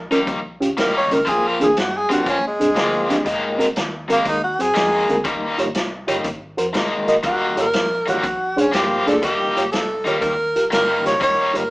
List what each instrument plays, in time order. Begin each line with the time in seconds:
0.10 fingered electric bass A#1, overdriven electric guitar D#3 G3 A#3 D#4, reed electric piano C#4 F4 A#4, closed hi-hat
0.27 fingered electric bass A#1, kick, closed hi-hat
0.60 fingered electric bass C#2, reed electric piano C#4 F4 G4, closed hi-hat
0.77 fingered electric bass C2, overdriven electric guitar D#3 G3 A#3 D#4, tenor saxophone A#4, snare, closed hi-hat
0.97 tenor saxophone C#5
1.11 fingered electric bass C#2, reed electric piano C#4 F4 A#4, tenor saxophone A#4, closed hi-hat
1.25 fingered electric bass A#1, overdriven electric guitar F3 A#3 C4 F4, tenor saxophone G#4, kick, closed hi-hat
1.47 tenor saxophone A#4
1.60 fingered electric bass D#2, reed electric piano C4 D4 G#4, tenor saxophone G#4, closed hi-hat
1.77 fingered electric bass G2, tenor saxophone F#4, snare, closed hi-hat
1.97 tenor saxophone G#4
2.09 fingered electric bass A#2, overdriven electric guitar F3 A#3 C4 F4, reed electric piano C4 D4 G4, tenor saxophone F#4, closed hi-hat
2.26 fingered electric bass A#2, tenor saxophone C#4, kick, closed hi-hat
2.47 tenor saxophone G#3
2.60 fingered electric bass G2, reed electric piano C4 D4 G#4, closed hi-hat
2.75 fingered electric bass D2, overdriven electric guitar F3 A#3 C4 F4, snare, closed hi-hat
3.09 fingered electric bass A#1, reed electric piano C4 D4 G4, snare, closed hi-hat
3.25 fingered electric bass G#1, overdriven electric guitar D#3 G#3 A#3 D#4, kick, closed hi-hat
3.58 fingered electric bass C2, reed electric piano C4 F#4 A#4, closed hi-hat
3.76 fingered electric bass D#2, snare, closed hi-hat
4.08 fingered electric bass D#2, overdriven electric guitar D#3 G#3 A#3 D#4, tenor saxophone A#3, reed electric piano C4 F#4 A#4, closed hi-hat
4.25 fingered electric bass D#2, tenor saxophone D#4, kick, closed hi-hat
4.44 tenor saxophone F#4
4.59 fingered electric bass F#2, reed electric piano C4 F#4 C5, tenor saxophone G#4, closed hi-hat
4.74 fingered electric bass F2, overdriven electric guitar D#3 G#3 A#3 D#4, snare, closed hi-hat
5.09 fingered electric bass D2, reed electric piano C4 F#4 A#4, closed hi-hat
5.24 fingered electric bass D#1, overdriven electric guitar D#3 G3 A#3 D#4, kick, closed hi-hat
5.58 fingered electric bass G#1, reed electric piano F4 G4 C#5, closed hi-hat
5.74 fingered electric bass C2, snare, closed hi-hat
6.07 fingered electric bass G1, overdriven electric guitar D#3 G3 A#3 D#4, reed electric piano F4 G4 C#5, closed hi-hat
6.24 fingered electric bass G#1, kick, closed hi-hat
6.57 fingered electric bass F2, reed electric piano F#4 A#4 C5, closed hi-hat
6.73 fingered electric bass C2, overdriven electric guitar D#3 G#3 A#3 D#4, snare, closed hi-hat
7.08 fingered electric bass F1, reed electric piano F#4 A#4 D#5, closed hi-hat
7.23 fingered electric bass D#1, overdriven electric guitar D#3 G3 A#3 D#4, tenor saxophone F#4, kick, closed hi-hat
7.57 fingered electric bass G1, reed electric piano F4 G4 C#5, tenor saxophone A#4, closed hi-hat
7.73 fingered electric bass A#1, snare, closed hi-hat
8.06 fingered electric bass A1, overdriven electric guitar D#3 G3 A#3 D#4, reed electric piano F4 G4 C#5, tenor saxophone F#4, closed hi-hat
8.23 fingered electric bass A#1, kick, closed hi-hat
8.56 fingered electric bass G#2, tenor saxophone C#4, reed electric piano D4 G#4 C5, closed hi-hat
8.72 fingered electric bass G2, overdriven electric guitar F3 A#3 C4 F4, tenor saxophone G4, snare, closed hi-hat
9.06 fingered electric bass G#2, reed electric piano D4 G#4 D5, tenor saxophone A4, snare, closed hi-hat
9.22 fingered electric bass D#1, overdriven electric guitar D#3 G3 A#3 D#4, tenor saxophone G4, kick, closed hi-hat
9.56 fingered electric bass G#1, reed electric piano F4 G4 C#5, closed hi-hat
9.72 fingered electric bass C2, tenor saxophone A4, snare, closed hi-hat
10.05 fingered electric bass D#2, overdriven electric guitar D#3 G3 A#3 D#4, reed electric piano F4 G4 C#5, tenor saxophone A#4, closed hi-hat
10.21 fingered electric bass D#2, tenor saxophone A#4, kick, closed hi-hat
10.56 fingered electric bass C2, reed electric piano F4 G4 A#4, closed hi-hat
10.71 fingered electric bass G1, overdriven electric guitar D#3 G3 A#3 D#4, tenor saxophone A#4, snare, closed hi-hat
11.05 fingered electric bass C#2, reed electric piano F4 G4 C5, tenor saxophone C#5, snare, closed hi-hat
11.20 fingered electric bass D#1, overdriven electric guitar D#3 G3 A#3 D#4, tenor saxophone C#5, kick, closed hi-hat
11.54 fingered electric bass G1, reed electric piano F4 G4 C#5, tenor saxophone A#4, closed hi-hat